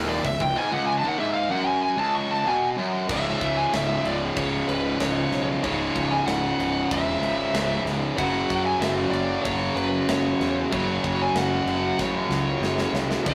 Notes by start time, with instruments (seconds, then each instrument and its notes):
Already playing: fingered electric bass D#1, distorted electric guitar D#2
0.09 lead electric guitar D5
0.24 fingered electric bass C#1, distorted electric guitar C#2, lead electric guitar E5, kick, open hi-hat
0.40 fingered electric bass C#1, distorted electric guitar C#2, lead electric guitar G5, kick
0.56 distorted electric guitar G#2, lead electric guitar G#5
0.71 distorted electric guitar C#2, lead electric guitar F#5
0.87 lead electric guitar G#5
0.98 lead electric guitar A5
1.04 distorted electric guitar D#2
1.08 lead electric guitar F#5
1.18 distorted electric guitar G#2, lead electric guitar E5
1.33 lead electric guitar F5
1.50 distorted electric guitar F#2, lead electric guitar F#5
1.66 lead electric guitar G#5
1.83 lead electric guitar G#5
1.97 distorted electric guitar C#2, lead electric guitar A5
2.15 lead electric guitar C#6
2.31 lead electric guitar A5
2.45 distorted electric guitar B2, lead electric guitar G#5
2.77 distorted electric guitar F#2
3.07 fingered electric bass C#1, distorted electric guitar C#2 G#2, kick, crash
3.12 distorted electric guitar C#3, lead electric guitar E5
3.41 fingered electric bass C#2, kick, crash
3.57 lead electric guitar G#5
3.73 fingered electric bass C#1, lead electric guitar E5, snare, crash
4.05 fingered electric bass C#1, lead electric guitar D5, crash
4.36 fingered electric bass C#1, distorted electric guitar C#2 G#2 C#3, lead electric guitar C#5, kick, crash
4.68 fingered electric bass C#1, lead electric guitar B4, crash
5.00 fingered electric bass C#1, lead electric guitar C#5, snare, crash
5.32 fingered electric bass B1, snare, crash
5.63 fingered electric bass C#1, distorted electric guitar C#2 G#2, lead electric guitar C#5, kick, crash
5.67 distorted electric guitar C#3
5.95 fingered electric bass C#1, kick, crash
6.11 lead electric guitar G#5
6.26 fingered electric bass C#1, lead electric guitar F#5, snare, crash
6.59 fingered electric bass C#1, crash
6.89 fingered electric bass E1, distorted electric guitar C#2 G#2, lead electric guitar E5, kick, crash
6.93 distorted electric guitar C#3
7.21 fingered electric bass G#1, crash
7.53 fingered electric bass C#1, snare, crash
7.85 fingered electric bass C#1, snare, crash
8.17 fingered electric bass F#1, distorted electric guitar F#2 C#3 F#3, lead electric guitar F#5, kick, crash
8.50 fingered electric bass F#2, kick, crash
8.66 lead electric guitar G#5
8.79 fingered electric bass F#1, lead electric guitar E5, snare, crash
9.10 fingered electric bass F#1, lead electric guitar D5, crash
9.43 fingered electric bass F#1, distorted electric guitar F#2 C#3, lead electric guitar C#5, kick, crash
9.48 distorted electric guitar F#3
9.75 fingered electric bass F#1, lead electric guitar B4, crash
10.08 fingered electric bass F#1, lead electric guitar C#5, snare, crash
10.40 fingered electric bass E2, snare, crash
10.71 fingered electric bass F#1, distorted electric guitar F#2 C#3 F#3, lead electric guitar C#5, kick, crash
11.04 fingered electric bass F#1, kick, crash
11.22 lead electric guitar G#5
11.34 fingered electric bass F#1, lead electric guitar F#5, snare, crash
11.65 fingered electric bass F#1, crash
11.98 fingered electric bass A1, distorted electric guitar F#2 C#3 F#3, lead electric guitar C#5, kick, snare
12.29 fingered electric bass C#2, snare
12.60 fingered electric bass F#1, snare
12.78 snare
12.93 fingered electric bass C2, snare
13.11 snare
13.25 fingered electric bass C#1, distorted electric guitar C#2 G#2 C#3, lead electric guitar E5, kick, splash, crash